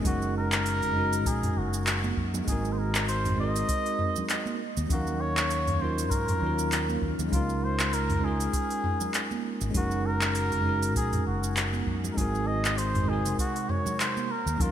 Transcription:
0.01 fretless electric bass F#1, tine electric piano G#3 C#4 D#4, kick, open hi-hat, low conga, shaker
0.06 muted trumpet F#4, tine electric piano F#4 A#4
0.22 shaker
0.38 muted trumpet A#4
0.52 clap, open hi-hat, shaker
0.66 open hi-hat, shaker
0.82 mid tom, open hi-hat, shaker
0.93 tine electric piano G#3 C#4 D#4
0.98 tine electric piano F#4 A#4
1.13 open hi-hat, shaker
1.26 fretless electric bass A#1, muted trumpet G#4, kick, open hi-hat, shaker
1.43 mid tom, open hi-hat, shaker
1.57 fretless electric bass F#1, muted trumpet F#4
1.73 shaker
1.87 clap, open hi-hat, shaker
2.04 high conga, shaker
2.17 fretless electric bass F#2, kick
2.34 high conga, low conga, shaker
2.45 fretless electric bass G#1, tine electric piano G#3 C4 D#4, muted trumpet G#4, kick, open hi-hat, low conga, shaker
2.50 tine electric piano F#4 A#4
2.65 shaker
2.72 muted trumpet C5
2.79 muted trumpet A#4
2.95 clap, open hi-hat, shaker
3.08 muted trumpet C5, open hi-hat, shaker
3.25 mid tom, open hi-hat, shaker
3.36 tine electric piano G#3 C4 D#4
3.40 tine electric piano F#4 A#4, muted trumpet D#5
3.56 open hi-hat, shaker
3.69 kick, open hi-hat, shaker
3.86 open hi-hat, shaker
3.99 mid tom
4.16 low conga, shaker
4.30 clap, open hi-hat, shaker
4.46 high conga, shaker
4.77 fretless electric bass D#2, high conga, shaker
4.88 fretless electric bass D#2, tine electric piano F#3 C#4 D#4, kick, open hi-hat, low conga, shaker
4.92 muted trumpet F#4, tine electric piano A#4 F5
5.07 shaker
5.21 muted trumpet C#5
5.37 clap, open hi-hat, shaker
5.50 open hi-hat, shaker
5.67 mid tom, open hi-hat, shaker
5.80 tine electric piano F#3 C#4 D#4 F4 A#4, muted trumpet C5
5.98 open hi-hat, shaker
6.10 fretless electric bass G#2, muted trumpet A#4, kick, open hi-hat, shaker
6.28 mid tom, open hi-hat, shaker
6.39 fretless electric bass D#2, tine electric piano F#3 C#4 D#4
6.44 tine electric piano F4 A#4
6.59 shaker
6.72 clap, open hi-hat, shaker
6.89 high conga, shaker
7.02 fretless electric bass D#2, kick
7.19 fretless electric bass D#2, high conga, low conga, shaker
7.29 fretless electric bass C#2, tine electric piano G#3 C#4 D#4, kick
7.33 muted trumpet F4, tine electric piano F4 A#4, open hi-hat, low conga, shaker
7.49 shaker
7.64 muted trumpet C5
7.80 clap, open hi-hat, shaker
7.93 muted trumpet A#4, open hi-hat, shaker
8.10 mid tom, open hi-hat, shaker
8.20 tine electric piano G#3 C#4 D#4
8.24 tine electric piano F4 A#4, muted trumpet G#4
8.40 open hi-hat, shaker
8.53 kick, open hi-hat, shaker
8.70 open hi-hat, shaker
8.84 mid tom
9.01 low conga, shaker
9.14 clap, open hi-hat, shaker
9.31 high conga, shaker
9.61 fretless electric bass G#1, high conga, shaker
9.71 tine electric piano G#3 C#4 D#4, kick, open hi-hat, shaker
9.75 fretless electric bass F#1, tine electric piano F#4 A#4, muted trumpet F#4, low conga
9.91 shaker
10.06 muted trumpet A#4
10.21 clap, open hi-hat, shaker
10.35 open hi-hat, shaker
10.52 mid tom, open hi-hat, shaker
10.61 tine electric piano G#3 C#4 D#4
10.67 tine electric piano F#4 A#4
10.82 open hi-hat, shaker
10.96 fretless electric bass A#1, muted trumpet G#4, kick, open hi-hat, shaker
11.13 mid tom, open hi-hat, shaker
11.27 fretless electric bass F#1, muted trumpet F#4
11.43 shaker
11.57 clap, open hi-hat, shaker
11.73 high conga, shaker
11.87 fretless electric bass F#2, kick
12.04 high conga, low conga, shaker
12.11 tine electric piano G#3, muted trumpet A#4
12.15 fretless electric bass G#1, tine electric piano C4 D#4, muted trumpet G#4, kick, open hi-hat, low conga, shaker
12.19 tine electric piano F#4 A#4
12.35 shaker
12.47 muted trumpet D#5
12.65 clap, open hi-hat, shaker
12.78 muted trumpet C5, open hi-hat, shaker
12.95 mid tom, open hi-hat, shaker
13.05 tine electric piano C3 G#3 D#4, muted trumpet G#4
13.11 tine electric piano F#4 A#4
13.25 open hi-hat, shaker
13.38 muted trumpet F#4, kick, open hi-hat, shaker
13.56 open hi-hat, shaker
13.69 muted trumpet C#5, mid tom
13.86 low conga, shaker
14.00 muted trumpet C5, clap, open hi-hat, shaker
14.17 high conga, shaker
14.31 muted trumpet A#4
14.46 fretless electric bass D#2, high conga, shaker
14.56 fretless electric bass D#2, tine electric piano F#3 C#4 D#4, kick, low conga
14.61 muted trumpet F4, tine electric piano F4 A#4, open hi-hat, shaker

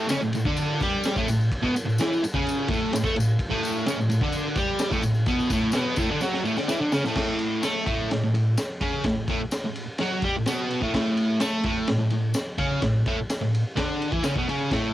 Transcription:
0.08 distorted electric guitar C#3 C#4, snare, ride, tambourine
0.21 distorted electric guitar A2, tambourine
0.33 distorted electric guitar A2, ride, tambourine
0.45 distorted electric guitar D3 D4, kick
0.57 ride, tambourine
0.80 distorted electric guitar G3 G4, kick, ride, tambourine
1.04 snare, ride, tambourine
1.16 distorted electric guitar A2 A3, kick, tambourine
1.28 distorted electric guitar A2, ride, tambourine
1.41 tambourine
1.52 kick, ride
1.62 distorted electric guitar B2 B3, kick
1.75 muted distorted electric guitar stroke, ride, tambourine
1.86 distorted electric guitar A2, tambourine
1.98 distorted electric guitar E3 E4, snare, ride, tambourine
2.13 tambourine
2.24 muted distorted electric guitar stroke, ride, tambourine
2.34 distorted electric guitar C#3 C#4, kick
2.47 ride, tambourine
2.68 distorted electric guitar A2 A3, kick, ride
2.74 tambourine
2.93 distorted electric guitar A2, snare, ride, tambourine
3.04 distorted electric guitar A3 A4, kick, tambourine
3.16 distorted electric guitar A2, ride
3.20 tambourine
3.31 tambourine
3.39 kick, ride
3.50 distorted electric guitar A2 A3, kick
3.63 ride, tambourine
3.77 tambourine
3.86 distorted electric guitar C#3 C#4, snare, ride, tambourine
3.97 distorted electric guitar A2
4.01 tambourine
4.09 distorted electric guitar A2, ride, tambourine
4.21 distorted electric guitar D3 D4, kick
4.32 ride, tambourine
4.55 distorted electric guitar G3 G4, kick, ride, tambourine
4.79 snare, ride, tambourine
4.90 distorted electric guitar A2 A3, kick, tambourine
5.02 distorted electric guitar A2, ride, tambourine
5.14 tambourine
5.26 distorted electric guitar B2 B3, kick, ride, tambourine
5.40 tambourine
5.50 distorted electric guitar A2 A3, kick, ride, tambourine
5.72 distorted electric guitar B2 B3, snare, ride, tambourine
5.96 distorted electric guitar A2 A3, kick, ride, tambourine
6.11 distorted electric guitar D3 D4
6.21 distorted electric guitar F#3 F#4, snare, tambourine
6.34 snare
6.44 distorted electric guitar A2 A3, tambourine
6.56 distorted electric guitar D3 D4, snare, tambourine
6.68 distorted electric guitar E3 E4, snare, tambourine
6.80 distorted electric guitar D3 D4
6.92 distorted electric guitar C#3 C#4, snare, tambourine
7.04 distorted electric guitar A2 A3, snare, tambourine
7.15 distorted electric guitar A2 A3, kick, snare, crash
7.39 ride
7.62 distorted electric guitar A3 A4, snare, ride, tambourine
7.85 distorted electric guitar A2 A3, kick, ride
8.11 distorted electric guitar A2, snare, ride
8.23 distorted electric guitar A2
8.34 distorted electric guitar A2, ride
8.57 snare, ride, tambourine
8.81 distorted electric guitar C#3 C#4, kick, ride
9.04 distorted electric guitar A2, kick, snare, ride
9.28 distorted electric guitar A2 A3, kick, ride
9.51 snare, ride, tambourine
9.65 distorted electric guitar A2
9.76 ride
9.98 distorted electric guitar F#3 F#4, snare, ride
10.22 distorted electric guitar G3 G4, kick, ride
10.37 distorted electric guitar A2
10.46 distorted electric guitar B2 B3, snare, ride, tambourine
10.70 ride
10.82 distorted electric guitar A2 A3, kick
10.94 distorted electric guitar A2 A3, kick, snare, ride
11.17 ride
11.40 distorted electric guitar A3 A4, snare, ride, tambourine
11.63 distorted electric guitar A2 A3, kick, ride
11.87 distorted electric guitar A2, snare, ride
11.98 distorted electric guitar A2
12.10 distorted electric guitar A2, ride
12.34 snare, ride, tambourine
12.58 distorted electric guitar C#3 C#4, kick, ride
12.82 distorted electric guitar A2, kick, snare, ride
13.06 distorted electric guitar A2 A3, kick, ride
13.29 snare, ride, tambourine
13.41 distorted electric guitar A2
13.55 ride
13.76 distorted electric guitar D3 D4, kick, snare, ride
14.02 ride
14.11 distorted electric guitar E3 E4, kick
14.23 distorted electric guitar C#3 C#4, snare, ride, tambourine
14.36 distorted electric guitar B2 B3, kick
14.48 distorted electric guitar C#3 C#4, ride
14.71 distorted electric guitar A2 A3, kick, snare, ride

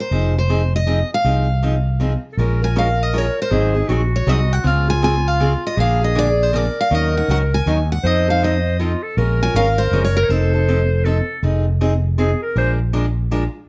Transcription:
0.00 steel-string acoustic guitar C5
0.11 fretless electric bass F1, steel-string acoustic guitar F3 C4 D#4 G#4
0.38 steel-string acoustic guitar C5
0.49 steel-string acoustic guitar F3 C4 D#4 G#4
0.76 steel-string acoustic guitar D#5
0.87 steel-string acoustic guitar F3 C4 D#4 G#4
1.14 steel-string acoustic guitar F5
1.25 fretless electric bass C2, steel-string acoustic guitar F3 C4 D#4 G#4
1.63 steel-string acoustic guitar F3 C4 D#4 G#4
2.00 steel-string acoustic guitar F3 C4 D#4 G#4
2.33 clarinet A4
2.37 fretless electric bass A#1, steel-string acoustic guitar F3 G#3 C#4 F4 A#4, clarinet A#4
2.62 steel-string acoustic guitar C#4 F4 A#4 G#5
2.76 steel-string acoustic guitar F3 G#3 C#4 F4 A#4 F5
3.03 steel-string acoustic guitar D#5
3.13 steel-string acoustic guitar F3 G#3 C#4 F4 A#4
3.18 steel-string acoustic guitar C#5
3.42 steel-string acoustic guitar C5
3.51 fretless electric bass G#1, steel-string acoustic guitar D#3 F#3 C4 D#4 G#4, clarinet G#4
3.74 steel-string acoustic guitar C4 D#4 G#4
3.88 fretless electric bass A#1, steel-string acoustic guitar D#3 F#3 C4 D#4 G#4, clarinet F#4
4.16 steel-string acoustic guitar C#5
4.27 fretless electric bass C2, steel-string acoustic guitar D#3 F#3 C4 D#4 G#4 D#5
4.53 steel-string acoustic guitar F#5
4.64 fretless electric bass C#2, steel-string acoustic guitar C#3 G#3 C4 F4 G#4 F5, clarinet F4
4.87 steel-string acoustic guitar C4 F4 G#4 G#5
5.02 steel-string acoustic guitar C#3 G#3 C4 F4 G#4 G#5
5.28 steel-string acoustic guitar F5
5.40 steel-string acoustic guitar C#3 G#3 C4 F4 G#4
5.67 steel-string acoustic guitar D#5
5.77 fretless electric bass A#1, steel-string acoustic guitar D3 F3 A#3 D4 G#4 F5, clarinet G#4
6.01 steel-string acoustic guitar A#3 D4 G#4 D#5
6.15 steel-string acoustic guitar D3 F3 A#3 D4 G#4 D5
6.43 steel-string acoustic guitar C5
6.53 steel-string acoustic guitar D3 F3 A#3 D4 G#4 D5, clarinet A#4
6.81 steel-string acoustic guitar F5
6.90 fretless electric bass D#2, steel-string acoustic guitar D#3 F#3 C#4 D#4 A#4, clarinet A#4
6.95 steel-string acoustic guitar D#5
7.14 steel-string acoustic guitar C#4 D#4 A#4 F#5
7.28 fretless electric bass C#2, steel-string acoustic guitar D#3 F#3 C#4 D#4 A#4 F#5
7.54 steel-string acoustic guitar G#5
7.66 fretless electric bass D#2, steel-string acoustic guitar D#3 F#3 C#4 D#4 A#4
7.92 steel-string acoustic guitar F#5
8.04 fretless electric bass F2, steel-string acoustic guitar F3 C4 D#4 A4 D#5, clarinet C5
8.28 steel-string acoustic guitar C4 D#4 A4 F5
8.43 steel-string acoustic guitar F3 C4 D#4 A4 D#5
8.79 steel-string acoustic guitar F3 C4 D#4 A4, clarinet F4
9.03 clarinet A4
9.17 fretless electric bass A#1, steel-string acoustic guitar F3 G#3 C#4 F4 A#4, clarinet A#4
9.41 steel-string acoustic guitar C#4 F4 A#4 G#5
9.54 fretless electric bass G#1, steel-string acoustic guitar F3 G#3 C#4 F4 A#4 F5
9.78 steel-string acoustic guitar C5
9.91 fretless electric bass F#1, steel-string acoustic guitar F3 G#3 C#4 F4 A#4
10.04 steel-string acoustic guitar C#5
10.17 steel-string acoustic guitar A#4
10.24 clarinet C#5
10.29 fretless electric bass F1, steel-string acoustic guitar F3 C4 D#4 A4, clarinet C5
10.54 steel-string acoustic guitar C4 D#4 A4
10.68 steel-string acoustic guitar F3 C4 D#4 A4
11.04 steel-string acoustic guitar F3 C4 D#4 A4, clarinet A4
11.43 fretless electric bass F1, steel-string acoustic guitar F3 C4 D#4 G#4
11.81 steel-string acoustic guitar F3 C4 D#4 G#4
12.18 steel-string acoustic guitar F3 C4 D#4 G#4, clarinet G#4
12.43 clarinet A#4
12.56 fretless electric bass A#1, steel-string acoustic guitar F3 G#3 D4 F4 A#4, clarinet C5
12.93 steel-string acoustic guitar F3 G#3 D4 F4 A#4
13.31 steel-string acoustic guitar F3 G#3 D4 F4 A#4

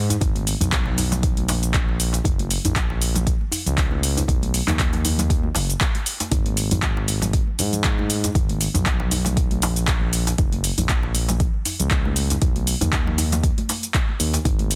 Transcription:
Already playing: analog synth bass G#2
0.10 closed hi-hat, djembe tone, shaker
0.21 analog synth bass G#1, kick, closed hi-hat, muted conga, djembe bass, shaker
0.35 closed hi-hat, high conga
0.47 open hi-hat, shaker
0.61 analog synth bass B1, closed hi-hat, muted conga, djembe tone, low conga, djembe bass, shaker
0.72 kick, clap, closed hi-hat, shaker
0.86 djembe slap, low conga
0.97 open hi-hat, muted conga, djembe tone, shaker
1.12 closed hi-hat, djembe slap, high conga, low conga, shaker
1.23 kick, closed hi-hat, djembe tone, shaker
1.37 closed hi-hat, muted conga, high conga
1.49 analog synth bass A#1, open hi-hat, djembe slap, high conga, shaker
1.63 closed hi-hat, shaker
1.74 kick, clap, closed hi-hat, shaker
1.88 muted conga
2.00 open hi-hat, shaker
2.13 closed hi-hat, djembe slap, shaker
2.24 analog synth bass F#1, kick, closed hi-hat, muted conga, djembe bass, shaker
2.39 closed hi-hat, high conga
2.51 open hi-hat, shaker
2.64 analog synth bass A#1, closed hi-hat, muted conga, high conga, low conga, djembe bass, shaker
2.76 kick, clap, closed hi-hat, shaker
2.90 djembe slap
3.01 open hi-hat, muted conga, shaker
3.15 closed hi-hat, djembe slap, high conga, low conga, shaker
3.27 kick, closed hi-hat, shaker
3.41 muted conga
3.51 open hi-hat, djembe tone, shaker
3.66 analog synth bass C#2, closed hi-hat, low conga, shaker
3.78 kick, clap, closed hi-hat, shaker
3.91 muted conga, djembe tone, high conga
4.03 open hi-hat, shaker
4.17 closed hi-hat, djembe tone, shaker
4.28 analog synth bass B1, kick, closed hi-hat, muted conga, djembe bass, shaker
4.42 closed hi-hat, high conga
4.54 open hi-hat, shaker
4.67 analog synth bass D#2, clap, closed hi-hat, muted conga, djembe tone, high conga, low conga, djembe bass, shaker
4.79 kick, clap, closed hi-hat, shaker
4.93 closed hi-hat, djembe slap, low conga
5.05 open hi-hat, muted conga, djembe tone, shaker
5.18 closed hi-hat, djembe slap, high conga, low conga, shaker
5.30 analog synth bass D#2, kick, closed hi-hat, djembe tone, shaker
5.43 muted conga, high conga
5.55 analog synth bass F#1, open hi-hat, djembe slap, high conga, shaker
5.70 closed hi-hat, shaker
5.81 kick, clap, closed hi-hat, shaker
5.95 closed hi-hat, muted conga
6.06 open hi-hat, shaker
6.20 closed hi-hat, djembe slap, high conga, shaker
6.31 analog synth bass G#1, kick, closed hi-hat, muted conga, djembe bass, shaker
6.46 closed hi-hat, high conga
6.57 open hi-hat, shaker
6.71 closed hi-hat, muted conga, high conga, low conga, djembe bass, shaker
6.83 kick, clap, closed hi-hat, shaker
6.97 djembe slap
7.08 open hi-hat, muted conga, shaker
7.22 closed hi-hat, djembe slap, high conga, low conga, shaker
7.33 kick, closed hi-hat, shaker
7.47 muted conga
7.59 analog synth bass G#2, open hi-hat, djembe tone, shaker
7.73 closed hi-hat, low conga, shaker
7.84 kick, clap, closed hi-hat, shaker
7.98 muted conga, high conga, djembe tone
8.10 open hi-hat, shaker
8.24 closed hi-hat, djembe tone, shaker
8.35 analog synth bass G#1, kick, closed hi-hat, muted conga, djembe bass, shaker
8.49 closed hi-hat, high conga
8.61 open hi-hat, shaker
8.74 analog synth bass B1, closed hi-hat, muted conga, djembe tone, low conga, djembe bass, shaker
8.86 kick, clap, closed hi-hat, shaker
9.00 djembe slap, low conga
9.11 open hi-hat, muted conga, djembe tone, shaker
9.25 closed hi-hat, djembe slap, high conga, low conga, shaker
9.37 kick, closed hi-hat, djembe tone, shaker
9.51 closed hi-hat, muted conga, high conga
9.62 analog synth bass A#1, open hi-hat, djembe slap, high conga, shaker
9.76 closed hi-hat, shaker
9.88 kick, clap, closed hi-hat, shaker
10.01 muted conga
10.13 open hi-hat, shaker
10.27 closed hi-hat, djembe slap, shaker
10.38 analog synth bass F#1, kick, closed hi-hat, muted conga, djembe bass, shaker
10.52 closed hi-hat, high conga
10.64 open hi-hat, shaker
10.78 analog synth bass A#1, closed hi-hat, muted conga, high conga, djembe bass, low conga, shaker
10.89 kick, clap, closed hi-hat, shaker
11.03 djembe slap
11.15 open hi-hat, muted conga, shaker
11.29 closed hi-hat, djembe slap, high conga, low conga, shaker
11.40 kick, closed hi-hat, shaker
11.54 muted conga
11.65 open hi-hat, djembe tone, shaker
11.79 analog synth bass C#2, closed hi-hat, low conga, shaker
11.91 kick, clap, closed hi-hat, shaker
12.05 muted conga, djembe tone, high conga
12.16 open hi-hat, shaker
12.30 closed hi-hat, djembe tone, shaker
12.41 analog synth bass B1, kick, closed hi-hat, muted conga, djembe bass, shaker
12.56 closed hi-hat, high conga
12.67 open hi-hat, shaker
12.81 analog synth bass D#2, closed hi-hat, muted conga, djembe tone, djembe bass, low conga, shaker
12.93 kick, clap, closed hi-hat, shaker
13.06 djembe slap, low conga
13.18 open hi-hat, muted conga, djembe tone, shaker
13.32 closed hi-hat, djembe slap, high conga, low conga, shaker
13.43 kick, closed hi-hat, djembe tone, shaker
13.58 closed hi-hat, muted conga, high conga
13.69 open hi-hat, djembe slap, high conga, shaker
13.83 closed hi-hat, shaker
13.94 kick, clap, closed hi-hat, shaker
14.09 muted conga
14.20 analog synth bass D#2, open hi-hat, shaker
14.34 closed hi-hat, djembe slap, shaker
14.45 analog synth bass G#1, kick, closed hi-hat, muted conga, djembe bass, shaker
14.59 closed hi-hat, high conga
14.71 open hi-hat, shaker

